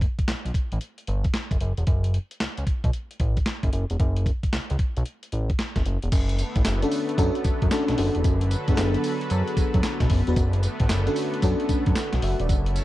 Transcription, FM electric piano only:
6.83 7.10 C#4 medium
6.83 7.10 D4 medium
6.83 7.10 F#4 medium
6.83 7.10 A4 medium
7.18 7.58 C#4 loud
7.18 7.58 D4 loud
7.18 7.58 F#4 medium
7.18 7.59 A4 loud
7.71 7.92 C#4 loud
7.71 7.92 D4 medium
7.71 7.92 F#4 medium
7.71 7.93 A4 loud
7.98 8.24 C#4 medium
7.98 8.25 D4 medium
7.98 8.25 F#4 medium
7.98 8.25 A4 medium
8.68 9.41 B3 medium
8.68 9.41 D4 medium
8.68 9.41 F#4 medium
8.68 8.73 G#4 medium
8.76 9.44 A4 loud
10.27 10.37 B3 medium
10.27 10.37 D4 medium
10.27 10.37 F#4 medium
10.27 10.37 B4 medium
11.07 11.34 C#4 medium
11.07 11.34 D4 medium
11.07 11.35 F#4 medium
11.07 11.35 A4 medium
11.43 11.83 C#4 loud
11.43 11.83 D4 loud
11.43 11.84 F#4 loud
11.43 11.84 A4 loud
12.14 12.23 A4 medium
12.14 12.23 F#5 medium
12.24 12.39 E5 medium
12.41 12.66 F#4 medium
12.41 12.65 D5 medium

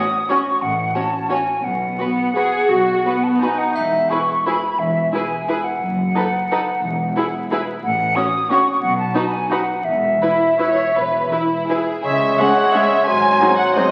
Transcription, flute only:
0.00 0.31 D#6 medium
0.29 0.63 C#6 medium
0.62 0.96 F#5 medium
0.95 1.30 A5 medium
1.30 1.66 G#5 medium
1.64 3.25 F#5 medium
3.24 3.43 A5 medium
3.42 3.60 G#5 soft
3.58 3.77 F#5 soft
3.75 4.11 E5 medium
4.10 4.48 C#6 medium
4.46 4.80 B5 medium
4.79 5.12 E5 medium
5.13 5.47 G#5 medium
5.48 5.65 G#5 medium
5.64 7.56 F#5 medium
7.83 8.17 F#5 medium
8.16 8.51 D#6 medium
8.50 8.81 C#6 medium
8.82 8.98 F#5 medium
8.98 9.33 A5 medium
9.32 9.50 G#5 medium
9.50 9.86 F#5 medium
9.85 11.87 E5 medium
12.04 13.82 G#6 soft

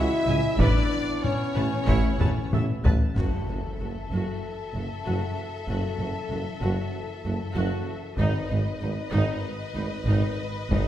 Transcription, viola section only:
0.27 0.35 E5 soft
0.27 0.36 G#5 medium
0.59 0.89 E4 medium
0.59 0.89 B4 medium
1.55 1.63 B4 soft
1.55 1.64 A5 soft
1.88 2.18 E4 medium
1.88 2.18 C#5 medium
2.20 2.28 B4 soft
2.20 2.28 A5 soft
2.53 2.61 A4 medium
2.53 2.62 E5 soft
2.85 2.94 B4 soft
2.85 2.93 A5 medium
3.18 3.47 F#4 soft
3.51 3.59 F#4 soft
3.81 3.89 F#4 soft
4.14 4.42 F#4 soft
4.75 4.83 F#4 soft
5.07 5.35 F#4 soft
5.68 5.97 F#4 soft
6.00 6.08 F#4 soft
6.30 6.38 F#4 soft
6.61 6.91 F#4 soft
7.25 7.33 F#4 soft
7.55 7.85 F#4 medium
8.18 8.48 D#4 medium
8.49 8.57 D#4 soft
8.81 8.89 D#4 soft
9.12 9.41 D#4 medium
9.76 9.84 D#4 soft
10.07 10.37 D#4 medium
10.72 10.88 D#4 medium

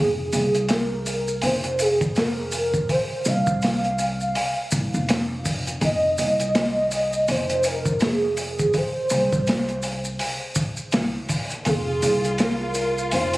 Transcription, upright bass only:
0.00 0.29 F1 loud
0.33 1.40 C2 medium
1.43 2.86 F1 medium
3.26 4.32 C2 loud
4.72 4.96 C2 medium
4.94 5.79 F1 medium
5.82 6.15 F1 loud
6.19 7.25 C2 loud
7.28 8.72 F1 medium
9.11 10.18 C2 medium
10.93 11.12 C2 medium
11.67 12.00 F1 loud
12.03 13.10 C2 medium
13.13 13.38 F1 medium

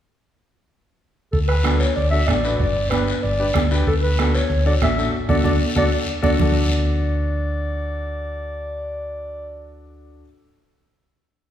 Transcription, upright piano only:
1.63 1.81 D4 medium
1.63 1.81 F#4 medium
1.63 1.81 A4 medium
2.12 2.18 D4 medium
2.12 2.18 F#4 medium
2.12 2.18 A4 medium
2.28 2.34 D4 medium
2.28 2.34 F#4 medium
2.28 2.34 A4 medium
2.43 2.60 D4 medium
2.43 2.60 F#4 medium
2.43 2.60 B4 medium
2.91 3.08 D4 medium
2.91 3.08 G4 medium
2.91 3.09 B4 medium
3.39 3.45 D4 medium
3.39 3.45 G4 medium
3.39 3.45 B4 medium
3.55 3.60 D4 medium
3.55 3.61 G4 medium
3.55 3.61 A4 medium
3.71 3.87 D4 medium
3.71 3.87 G4 medium
3.71 3.87 B4 medium
4.18 4.35 D4 medium
4.18 4.35 F#4 medium
4.18 4.35 A4 medium
4.66 4.71 D4 medium
4.66 4.72 F#4 medium
4.66 4.72 A4 medium
4.82 4.87 D4 medium
4.82 4.87 F#4 medium
4.82 4.87 A4 medium
4.97 5.13 D4 medium
4.97 5.13 F#4 medium
4.97 5.14 A4 medium
5.29 5.39 D4 medium
5.29 5.39 F#4 medium
5.29 5.39 A4 medium
5.43 5.55 D4 medium
5.43 5.54 F#4 medium
5.43 5.54 A4 medium
5.76 5.86 D4 medium
5.76 5.86 F#4 medium
5.76 5.86 A4 loud
6.22 6.33 D4 medium
6.22 6.33 F#4 medium
6.22 6.33 A4 medium
6.37 10.20 D4 medium
6.37 10.22 F#4 medium
6.41 10.24 A4 medium

